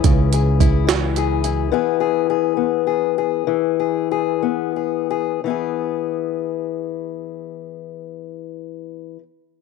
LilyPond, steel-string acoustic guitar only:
\new Staff \with { instrumentName = "Steel-string acoustic guitar" } { \time 6/8 \key e \major \tempo 4. = 62 << { r8 gis'8 e'4 gis'8 e'8 | <b e' gis'>8 gis'8 gis'4 gis'8 gis'8 | r8 gis'8 gis'4 gis'8 gis'8 | <b e' gis'>2.~ |
<b e' gis'>2. | } \\ { <cis e>4. e4. | e4. b4. | e4. b4. | e2.~ |
e2. | } >> }